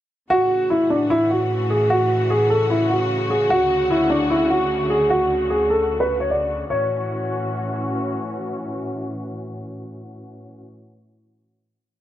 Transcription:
0.30 string section A2 C#3 E3 F#4, grand piano F#4
0.70 grand piano E4
0.90 grand piano D4
1.10 grand piano E4
1.30 grand piano F#4
1.70 grand piano G#4
1.90 grand piano F#4
2.30 grand piano G#4
2.50 grand piano A4
2.70 grand piano E4
2.90 grand piano F#4
3.30 grand piano G#4
3.50 string section D2 D3, grand piano F#4
3.90 grand piano E4
4.10 grand piano D4
4.30 grand piano E4
4.50 grand piano F#4
4.90 grand piano G#4
5.10 grand piano F#4
5.50 grand piano G#4
5.70 grand piano A4
6.00 grand piano B4
6.20 grand piano C#5
6.30 grand piano D5
6.70 string section A2 E3 C#4 F#4, grand piano C#5

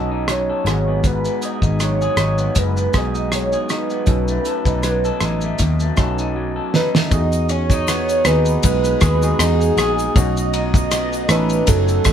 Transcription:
Already playing: picked electric bass B1, clean electric guitar B2 F#3 B3 D#4 A4, tine electric piano C#4 D#4 F#4 A4, soft synth lead D#5
0.11 clean electric guitar D#4
0.28 clean electric guitar F#3, soft synth lead C#5, cross-stick, closed hi-hat
0.50 clean electric guitar A4
0.65 picked electric bass G#1, clean electric guitar G#2, tine electric piano B3 D#4 F#4 G#4, cross-stick, closed hi-hat
0.88 clean electric guitar B3
1.04 clean electric guitar G#2, soft synth lead B4, kick, closed hi-hat, shaker
1.25 clean electric guitar B3, shaker
1.42 clean electric guitar G#4, soft synth lead D#5, closed hi-hat, shaker
1.62 picked electric bass G#1, clean electric guitar D#4, kick, shaker
1.80 clean electric guitar F#3, soft synth lead C#5, cross-stick, closed hi-hat, shaker
2.01 clean electric guitar G#4, shaker
2.17 picked electric bass G#1, clean electric guitar D#4, cross-stick, closed hi-hat, shaker
2.38 clean electric guitar B3, shaker
2.55 picked electric bass F#1, clean electric guitar G#2, soft synth lead B4, kick, closed hi-hat, shaker
2.76 clean electric guitar B3, shaker
2.92 picked electric bass B1, tine electric piano B3 D#4 F#4 G#4, clean electric guitar G#4, kick, cross-stick, closed hi-hat, shaker
2.98 soft synth lead D#5
3.14 clean electric guitar D#4, shaker
3.32 clean electric guitar F#3, soft synth lead C#5, cross-stick, closed hi-hat, shaker
3.53 clean electric guitar G#4, shaker
3.66 soft synth lead C#5, closed hi-hat, shaker
3.70 clean electric guitar D#4, soft synth lead B4, cross-stick
3.90 clean electric guitar B3, shaker
4.06 picked electric bass B1, clean electric guitar B2, tine electric piano C#4 D#4 F#4 A4, kick, closed hi-hat, shaker
4.28 clean electric guitar A3, shaker
4.45 clean electric guitar A4, closed hi-hat, shaker
4.65 picked electric bass B1, clean electric guitar D#4, kick, shaker
4.83 clean electric guitar F#3, cross-stick, closed hi-hat, shaker
5.05 clean electric guitar A4, shaker
5.21 picked electric bass A1, clean electric guitar D#4, cross-stick, closed hi-hat, shaker
5.41 clean electric guitar A3, shaker
5.59 picked electric bass D#2, clean electric guitar B2, kick, closed hi-hat, shaker
5.80 clean electric guitar A3, shaker
5.97 picked electric bass B1, tine electric piano C#4 D#4 F#4 B4, clean electric guitar A4, kick, cross-stick, closed hi-hat, shaker
6.18 clean electric guitar D#4, shaker
6.36 clean electric guitar F#3
6.56 clean electric guitar A4
6.74 clean electric guitar D#4, soft synth lead B4, snare
6.95 clean electric guitar A3, snare
7.10 picked electric bass E2, tine electric piano B3 D#4 F#4 G#4, soft synth lead D#5, kick, ride, shaker
7.32 shaker
7.49 clean electric guitar C#4, soft synth lead C#5, ride, shaker
7.70 clean electric guitar D#4, kick, shaker
7.88 clean electric guitar B3, cross-stick, ride, shaker
8.09 shaker
8.24 picked electric bass D#2, tine electric piano B3 D#4 F#4 G#4, clean electric guitar D#4, soft synth lead B4, cross-stick, ride, shaker
8.45 shaker
8.48 shaker
8.63 picked electric bass B1, clean electric guitar G#3, soft synth lead B4, kick, ride, shaker
8.65 shaker
8.84 shaker
9.01 picked electric bass D#2, clean electric guitar G#4, kick, cross-stick, ride, shaker
9.03 shaker
9.22 tine electric piano B3 D#4 F#4 G#4, shaker
9.39 picked electric bass E2, clean electric guitar D#4, soft synth lead G#4, cross-stick, ride, shaker
9.61 shaker
9.63 shaker
9.77 picked electric bass A#1, clean electric guitar G#4, cross-stick, ride, shaker
9.99 shaker
10.14 picked electric bass B1, clean electric guitar B2, tine electric piano A3 C#4 D#4 F#4, soft synth lead D#5, kick, ride, shaker
10.17 shaker
10.37 shaker
10.53 clean electric guitar D#4, ride, shaker
10.74 soft synth lead D#5, kick, shaker
10.77 shaker
10.91 clean electric guitar B3, cross-stick, ride, shaker
11.13 shaker
11.28 picked electric bass A1, tine electric piano A3 C#4 D#4 A4, clean electric guitar D#4, soft synth lead B4, cross-stick, ride, shaker
11.49 shaker
11.52 shaker
11.67 picked electric bass F#1, clean electric guitar F#3, soft synth lead A4, kick, ride, shaker
11.88 shaker
12.04 picked electric bass A1, kick, cross-stick, ride, shaker

